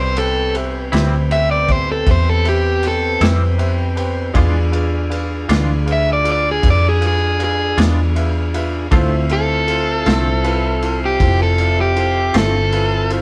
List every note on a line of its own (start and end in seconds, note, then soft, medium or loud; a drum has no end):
0.00 0.89 C2 medium
0.00 4.32 B3 medium
0.00 4.32 C4 medium
0.00 4.32 G4 medium
0.00 0.17 C5 medium
0.17 0.45 G4 medium
0.17 0.54 A4 loud
0.17 0.45 B4 medium
0.17 0.45 C5 soft
0.17 0.46 G5 medium
0.17 ride medium
0.55 0.83 G4 medium
0.55 0.83 B4 soft
0.55 0.83 C5 medium
0.55 0.83 E5 medium
0.55 ride medium
0.92 2.04 D2 medium
0.92 1.16 A2 medium
0.92 1.16 G3 medium
0.92 1.16 C4 medium
0.92 1.15 E4 medium
0.92 1.21 G4 medium
0.92 1.21 B4 medium
0.92 1.22 C5 medium
0.92 1.22 E5 medium
0.92 snare loud
0.92 ride medium
1.31 1.59 G4 medium
1.31 1.59 B4 soft
1.31 1.59 C5 soft
1.31 1.59 E5 medium
1.31 1.50 E5 medium
1.31 ride medium
1.51 1.72 D5 medium
1.67 1.97 G4 medium
1.67 1.97 B4 soft
1.67 1.97 C5 soft
1.67 1.97 E5 medium
1.67 kick medium
1.67 ride medium
1.72 1.89 C5 medium
1.92 2.08 A4 medium
2.07 3.18 E2 medium
2.07 2.36 G4 medium
2.07 2.36 B4 soft
2.07 2.36 C5 soft
2.07 2.36 E5 medium
2.07 kick loud
2.07 ride medium
2.11 2.29 C5 medium
2.29 2.46 A4 medium
2.44 2.73 G4 medium
2.44 2.73 B4 soft
2.44 2.73 C5 soft
2.44 2.74 E5 medium
2.44 ride medium
2.49 2.84 G4 medium
2.83 3.12 G4 soft
2.83 3.12 B4 soft
2.83 3.12 C5 soft
2.83 3.12 G5 medium
2.83 ride medium
2.88 3.22 A4 loud
3.21 4.32 F2 medium
3.21 3.45 A2 medium
3.21 3.44 G3 medium
3.21 3.44 C4 medium
3.21 3.44 E4 medium
3.21 3.50 G4 medium
3.21 3.50 B4 soft
3.21 3.50 C5 soft
3.21 3.50 E5 medium
3.21 snare loud
3.21 ride medium
3.58 3.87 G4 medium
3.58 3.87 B4 medium
3.58 3.88 C5 medium
3.58 3.87 E5 medium
3.58 ride medium
3.96 4.25 G4 medium
3.96 4.25 B4 medium
3.96 4.25 C5 medium
3.96 4.25 G5 medium
3.96 ride medium
4.34 5.46 E2 medium
4.34 4.58 E3 medium
4.34 4.58 G#3 medium
4.34 8.88 D4 medium
4.34 4.58 D4 medium
4.34 4.63 F4 medium
4.34 8.88 F4 medium
4.34 4.59 F4 medium
4.34 4.63 G#4 medium
4.34 8.88 G#4 medium
4.34 4.63 B4 medium
4.34 4.63 D5 medium
4.34 kick loud
4.34 ride medium
4.72 5.01 F4 medium
4.72 5.01 G#4 medium
4.72 5.01 B4 medium
4.72 5.01 D5 medium
4.72 ride medium
5.10 5.39 F4 medium
5.10 5.39 G#4 medium
5.10 5.39 B4 medium
5.10 5.39 D5 medium
5.10 ride medium
5.48 6.60 D2 medium
5.48 5.73 E3 medium
5.48 5.73 G#3 medium
5.48 5.72 D4 medium
5.48 5.77 F4 medium
5.48 5.72 F4 medium
5.48 5.77 G#4 medium
5.48 5.78 B4 medium
5.48 5.78 D5 medium
5.48 snare loud
5.48 ride medium
5.86 6.15 F4 medium
5.86 6.15 G#4 soft
5.86 6.15 B4 soft
5.86 6.16 D5 medium
5.86 ride medium
5.92 6.09 E5 medium
6.13 6.28 D5 medium
6.24 6.53 F4 medium
6.24 6.53 G#4 soft
6.24 6.53 B4 soft
6.24 6.54 D5 medium
6.24 ride medium
6.32 6.47 D5 loud
6.51 6.67 G#4 medium
6.62 7.74 F2 medium
6.62 6.92 F4 soft
6.62 6.92 G#4 soft
6.62 6.92 B4 soft
6.62 6.92 D5 medium
6.62 kick loud
6.62 ride medium
6.70 6.85 D5 medium
6.89 7.04 G#4 medium
7.00 7.30 F4 soft
7.00 7.30 G#4 soft
7.00 7.30 B4 soft
7.00 7.30 D5 medium
7.00 ride medium
7.07 7.41 G#4 medium
7.39 7.68 F4 medium
7.39 7.68 G#4 soft
7.39 7.68 B4 soft
7.39 7.68 D5 medium
7.39 ride medium
7.44 7.79 G#4 medium
7.77 8.88 E2 medium
7.77 8.02 E3 medium
7.77 8.01 G#3 medium
7.77 8.01 D4 medium
7.77 8.06 F4 medium
7.77 8.01 F4 medium
7.77 8.06 G#4 soft
7.77 8.06 B4 soft
7.77 8.07 D5 medium
7.77 snare loud
7.77 ride medium
8.15 8.44 F4 medium
8.15 8.44 G#4 medium
8.15 8.44 B4 medium
8.15 8.44 E5 medium
8.15 ride medium
8.54 8.82 F4 medium
8.54 8.83 G#4 medium
8.54 8.83 B4 medium
8.54 8.83 E5 medium
8.54 ride medium
8.91 10.03 D2 medium
8.91 9.14 D3 medium
8.91 9.15 A3 medium
8.91 13.22 C4 medium
8.91 9.15 C4 medium
8.91 13.22 E4 medium
8.91 9.21 E4 medium
8.91 13.22 F4 medium
8.91 9.21 F4 medium
8.91 9.15 F4 medium
8.91 9.21 A4 medium
8.91 9.21 C5 medium
8.91 kick loud
8.91 ride medium
9.29 9.59 E4 medium
9.29 9.58 F4 medium
9.29 9.59 A4 soft
9.29 10.99 A4 loud
9.29 9.59 C5 medium
9.29 ride medium
9.67 9.96 E4 medium
9.67 9.96 F4 medium
9.67 9.96 A4 soft
9.67 9.97 C5 medium
9.67 ride medium
10.05 11.17 C2 loud
10.05 10.30 D3 medium
10.05 10.30 A3 medium
10.05 10.29 C4 medium
10.05 10.34 E4 medium
10.05 10.34 F4 medium
10.05 10.29 F4 medium
10.05 10.34 A4 medium
10.05 10.35 C5 medium
10.05 snare loud
10.05 ride medium
10.44 10.73 E4 medium
10.44 10.73 F4 medium
10.44 10.73 A4 medium
10.44 10.73 B4 medium
10.44 ride medium
10.82 11.11 E4 medium
10.82 11.11 F4 soft
10.82 11.11 A4 soft
10.82 11.11 C5 medium
10.82 ride medium
11.05 11.40 G4 medium
11.20 12.31 F1 medium
11.20 11.49 E4 medium
11.20 11.49 F4 medium
11.20 11.49 A4 medium
11.20 11.49 C5 medium
11.20 kick loud
11.20 ride medium
11.43 11.78 A4 medium
11.58 11.87 E4 medium
11.58 11.87 F4 medium
11.58 11.88 A4 soft
11.58 11.88 D5 medium
11.58 ride medium
11.81 12.35 G4 medium
11.96 12.25 E4 medium
11.96 12.25 F4 soft
11.96 12.25 A4 soft
11.96 12.25 C5 medium
11.96 ride medium
12.34 13.22 G1 medium
12.34 12.58 D3 medium
12.34 12.58 A3 medium
12.34 12.58 C4 medium
12.34 12.63 E4 medium
12.34 12.63 F4 medium
12.34 12.57 F4 medium
12.34 12.63 A4 medium
12.34 12.63 C5 medium
12.34 snare loud
12.34 ride medium
12.38 13.10 A4 loud
12.72 13.01 E4 soft
12.72 13.01 F4 soft
12.72 13.01 A4 medium
12.72 13.01 B4 medium
12.72 ride medium
13.10 13.22 E4 medium
13.10 13.22 F4 medium
13.10 13.22 A4 soft
13.10 13.22 C5 medium
13.10 ride medium